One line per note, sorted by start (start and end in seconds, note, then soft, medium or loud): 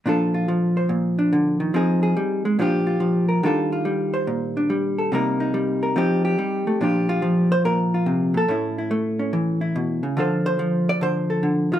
0.06 0.88 A#2 medium
0.06 0.48 F3 soft
0.06 1.17 D4 medium
0.06 0.34 F4 soft
0.06 0.76 A4 medium
0.34 1.75 F4 soft
0.48 1.74 F3 medium
0.77 1.73 C5 soft
0.89 1.72 A#2 medium
1.19 1.73 D4 soft
1.33 1.60 D3 medium
1.60 1.74 D#3 soft
1.74 2.16 F3 medium
1.74 2.57 C4 soft
1.74 2.57 D#4 soft
1.74 2.02 G#4 medium
2.03 2.57 G#4 medium
2.17 2.45 G3 medium
2.45 2.59 G#3 medium
2.59 3.41 A#2 medium
2.59 2.99 F3 medium
2.59 3.42 D4 soft
2.59 2.86 F4 medium
2.59 3.28 G4 medium
2.87 3.41 F4 soft
3.00 3.42 F3 medium
3.29 3.46 A#4 soft
3.43 5.10 D#3 medium
3.43 3.85 G3 soft
3.43 4.56 D4 soft
3.43 3.71 F4 medium
3.43 4.13 A4 medium
3.72 5.10 F4 soft
3.85 4.69 G3 medium
4.14 4.97 C5 medium
4.27 5.10 A#2 medium
4.57 5.10 D4 soft
4.70 5.13 G3 medium
4.98 5.10 A4 soft
5.12 5.96 C3 medium
5.12 5.53 G3 medium
5.12 5.96 A#3 soft
5.12 5.39 D#4 soft
5.12 5.82 A#4 medium
5.40 5.94 D#4 soft
5.54 5.94 G3 medium
5.83 5.94 A#4 soft
5.96 6.38 F3 medium
5.96 6.78 C4 medium
5.96 6.79 D#4 medium
5.96 6.24 G4 medium
6.25 6.82 G4 medium
6.39 6.66 G3 medium
6.67 6.80 A3 soft
6.81 7.64 A#2 medium
6.81 7.21 F3 soft
6.81 8.47 D4 soft
6.81 7.08 F4 soft
6.81 7.51 G4 soft
7.09 7.93 F4 medium
7.22 8.48 F3 medium
7.52 7.65 C5 medium
7.65 8.33 A#2 medium
7.65 8.34 A#4 medium
7.94 8.47 F4 soft
8.06 8.34 C3 medium
8.34 8.48 A#2 soft
8.34 9.20 A4 medium
8.48 9.74 A2 medium
8.48 8.90 A3 soft
8.48 9.18 C#4 soft
8.48 8.77 E4 soft
8.78 9.60 E4 soft
8.91 10.15 A3 medium
9.19 10.15 C#4 soft
9.33 10.03 E3 medium
9.61 10.15 E4 soft
9.76 10.03 B2 medium
10.03 10.17 C#3 soft
10.17 11.00 D3 medium
10.17 10.59 F3 soft
10.17 11.72 F4 soft
10.17 11.29 A4 soft
10.17 10.45 C5 soft
10.46 10.87 C5 medium
10.59 11.79 F3 medium
10.89 11.02 D5 loud
11.01 11.42 D3 medium
11.01 11.79 C5 medium
11.30 11.79 A4 soft
11.43 11.71 D3 medium
11.72 11.79 D#3 soft
11.72 11.79 F4 medium